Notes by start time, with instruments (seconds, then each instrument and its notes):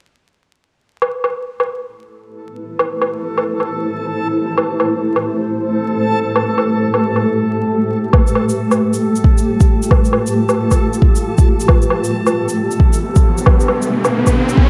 1.01 ambient pad A3, synth texture A4, low woodblock
1.08 ambient pad E4
1.20 ambient pad B4, low woodblock
1.29 ambient pad G4
1.60 ambient pad C5, low woodblock
2.79 low woodblock
3.02 low woodblock
3.38 low woodblock
3.60 low woodblock
4.57 low woodblock
4.80 low woodblock
5.16 low woodblock
5.23 ambient pad A4
6.36 low woodblock
6.58 low woodblock
6.94 low woodblock
7.16 low woodblock
8.13 kick, low woodblock
8.27 shaker
8.35 low woodblock
8.49 ambient pad F4, shaker
8.71 low woodblock, shaker
8.94 shaker
9.16 shaker
9.24 kick
9.38 shaker
9.60 kick, shaker
9.83 shaker
9.91 kick, low woodblock
10.05 shaker
10.13 low woodblock
10.27 shaker
10.49 low woodblock, shaker
10.71 kick, low woodblock, shaker
10.94 shaker
11.02 kick
11.16 shaker
11.38 kick, shaker
11.60 shaker
11.68 ambient pad B3, kick, riser, low woodblock
11.82 shaker
11.90 low woodblock
12.04 shaker
12.27 low woodblock, shaker
12.43 ambient pad D4
12.49 shaker
12.71 shaker
12.80 kick
12.93 shaker
13.16 kick, shaker
13.38 shaker
13.46 kick, low woodblock
13.60 shaker
13.68 low woodblock
13.82 shaker
14.05 low woodblock, shaker
14.27 kick, low woodblock, shaker
14.49 shaker
14.57 kick